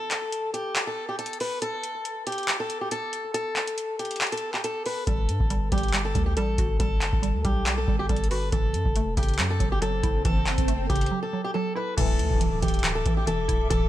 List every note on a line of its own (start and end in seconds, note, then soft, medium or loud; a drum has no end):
0.00 0.50 A4 loud
0.11 clap medium
0.11 closed hi-hat medium
0.32 closed hi-hat medium
0.54 0.85 G4 medium
0.54 closed hi-hat medium
0.76 clap loud
0.76 closed hi-hat medium
0.87 1.05 A4 medium
1.09 1.17 G4 medium
1.19 1.37 A4 medium
1.19 closed hi-hat medium
1.26 closed hi-hat medium
1.33 closed hi-hat medium
1.40 1.59 B4 medium
1.40 open hi-hat medium
1.62 2.23 A4 loud
1.62 closed hi-hat medium
1.83 closed hi-hat medium
2.05 closed hi-hat medium
2.27 2.58 G4 medium
2.27 closed hi-hat medium
2.32 closed hi-hat medium
2.38 closed hi-hat soft
2.43 closed hi-hat soft
2.48 clap loud
2.48 closed hi-hat medium
2.60 2.78 A4 medium
2.70 closed hi-hat medium
2.81 2.90 G4 medium
2.91 3.32 A4 medium
2.91 closed hi-hat medium
3.13 closed hi-hat medium
3.34 3.95 A4 loud
3.34 closed hi-hat medium
3.56 clap medium
3.56 closed hi-hat soft
3.67 closed hi-hat medium
3.78 closed hi-hat medium
3.99 4.30 G4 medium
3.99 closed hi-hat medium
4.05 closed hi-hat medium
4.11 closed hi-hat medium
4.16 closed hi-hat medium
4.21 clap loud
4.21 closed hi-hat medium
4.27 closed hi-hat medium
4.32 4.50 A4 medium
4.32 closed hi-hat medium
4.37 closed hi-hat medium
4.54 4.62 G4 medium
4.54 clap medium
4.64 4.82 A4 medium
4.64 closed hi-hat medium
4.86 5.04 B4 medium
4.86 open hi-hat medium
5.07 5.30 G1 loud
5.07 5.49 G3 medium
5.07 5.68 A4 loud
5.07 kick loud
5.07 closed hi-hat medium
5.29 5.40 G2 loud
5.29 closed hi-hat medium
5.40 5.71 G1 loud
5.40 kick loud
5.50 5.71 G3 medium
5.50 closed hi-hat medium
5.72 6.13 G1 loud
5.72 5.92 G3 medium
5.72 6.03 G4 medium
5.72 kick loud
5.72 closed hi-hat medium
5.78 closed hi-hat medium
5.83 closed hi-hat soft
5.88 closed hi-hat soft
5.93 6.14 G3 medium
5.93 clap loud
5.93 closed hi-hat medium
6.05 6.23 A4 medium
6.15 6.38 D2 loud
6.15 6.36 G3 medium
6.15 kick medium
6.15 closed hi-hat medium
6.26 6.35 G4 medium
6.37 6.57 A1 loud
6.37 6.79 G3 loud
6.37 6.77 A4 medium
6.37 closed hi-hat medium
6.58 6.79 G1 loud
6.58 7.66 F#4 medium
6.58 kick medium
6.58 closed hi-hat medium
6.80 7.03 G1 loud
6.80 7.21 G3 medium
6.80 7.41 A4 loud
6.80 kick loud
6.80 closed hi-hat medium
7.01 7.12 F#1 loud
7.01 clap medium
7.01 closed hi-hat medium
7.13 7.36 G1 loud
7.13 kick medium
7.23 7.44 G3 medium
7.23 closed hi-hat medium
7.34 7.44 D2 loud
7.45 7.86 B1 loud
7.45 7.65 G3 medium
7.45 7.76 G4 medium
7.45 kick loud
7.45 closed hi-hat medium
7.66 7.87 G3 medium
7.66 clap loud
7.66 closed hi-hat medium
7.78 7.96 A4 medium
7.88 8.08 G1 loud
7.88 8.09 G3 medium
7.88 kick medium
7.99 8.08 G4 medium
8.09 8.51 G1 loud
8.09 8.53 G3 medium
8.09 8.27 A4 medium
8.09 kick medium
8.09 closed hi-hat medium
8.16 closed hi-hat medium
8.24 closed hi-hat medium
8.31 8.53 F#4 medium
8.31 8.49 B4 medium
8.31 open hi-hat medium
8.52 8.76 F#1 loud
8.52 9.60 E3 medium
8.52 9.13 A4 loud
8.52 kick loud
8.52 closed hi-hat medium
8.52 swell medium
8.74 8.85 F#2 loud
8.74 closed hi-hat medium
8.85 9.09 F#1 loud
8.85 kick loud
8.96 10.04 A3 medium
8.96 closed hi-hat medium
9.07 9.17 E1 loud
9.17 9.40 F#1 loud
9.17 10.25 C#3 medium
9.17 9.48 G4 medium
9.17 kick loud
9.17 closed hi-hat medium
9.23 closed hi-hat medium
9.29 closed hi-hat soft
9.34 closed hi-hat soft
9.39 9.59 F#2 loud
9.39 9.59 F#3 medium
9.39 clap loud
9.39 closed hi-hat medium
9.50 9.68 A4 medium
9.60 10.02 F#1 loud
9.60 9.80 F#3 medium
9.60 kick medium
9.60 closed hi-hat medium
9.72 9.80 G4 medium
9.81 10.90 F#3 medium
9.81 10.23 A4 loud
9.81 closed hi-hat medium
10.03 10.24 F#1 loud
10.03 11.11 E4 medium
10.03 kick medium
10.03 closed hi-hat medium
10.25 10.57 F#1 loud
10.25 11.33 E3 medium
10.25 10.86 A4 loud
10.25 kick loud
10.25 closed hi-hat medium
10.46 clap loud
10.46 closed hi-hat soft
10.58 10.89 F#1 loud
10.58 kick loud
10.58 closed hi-hat medium
10.68 11.76 A3 medium
10.68 closed hi-hat medium
10.89 11.11 F#1 loud
10.89 11.98 C#3 medium
10.89 11.21 G4 medium
10.89 kick loud
10.89 closed hi-hat medium
10.96 closed hi-hat medium
11.01 closed hi-hat medium
11.06 closed hi-hat medium
11.11 11.32 F#3 medium
11.23 11.41 A4 medium
11.33 11.54 F#3 medium
11.44 11.53 G4 medium
11.54 11.98 F#3 medium
11.54 11.72 A4 medium
11.75 11.97 E4 medium
11.75 11.94 B4 medium
11.97 12.21 D1 loud
11.97 12.39 A2 medium
11.97 12.40 E3 medium
11.97 12.39 E3 loud
11.97 12.59 A4 loud
11.97 13.89 A4 medium
11.97 13.89 E5 medium
11.97 13.89 D6 medium
11.97 kick loud
11.97 closed hi-hat medium
11.97 crash loud
11.97 impact medium
12.19 12.30 D2 loud
12.19 closed hi-hat medium
12.31 12.61 D1 loud
12.31 kick loud
12.41 12.61 E3 medium
12.41 closed hi-hat medium
12.62 13.04 D1 loud
12.62 12.83 E3 medium
12.62 12.94 G4 medium
12.62 kick loud
12.62 closed hi-hat medium
12.68 closed hi-hat medium
12.74 closed hi-hat medium
12.79 closed hi-hat soft
12.84 13.05 E3 medium
12.84 clap loud
12.84 closed hi-hat medium
12.95 13.13 A4 medium
13.06 13.29 A1 loud
13.06 13.25 E3 medium
13.06 kick medium
13.06 closed hi-hat medium
13.17 13.26 G4 medium
13.27 13.48 E1 loud
13.27 13.69 E3 medium
13.27 13.68 A4 medium
13.27 closed hi-hat medium
13.48 13.70 D1 loud
13.48 13.89 E4 medium
13.48 kick medium
13.48 closed hi-hat medium
13.70 13.89 D1 loud
13.70 13.89 E3 medium
13.70 13.89 A4 loud
13.70 kick loud
13.70 closed hi-hat medium